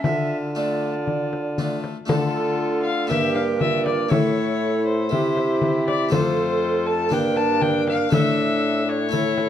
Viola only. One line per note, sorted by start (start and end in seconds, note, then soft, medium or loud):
0.06 0.56 F4 medium
0.56 1.87 F4 medium
2.09 3.12 F4 medium
3.11 3.63 G4 medium
3.61 4.11 F4 medium
4.11 5.10 E4 medium
5.12 6.14 E4 medium
6.13 7.14 F4 medium
7.13 8.12 D4 medium
8.13 9.11 D4 medium
9.13 9.49 E4 medium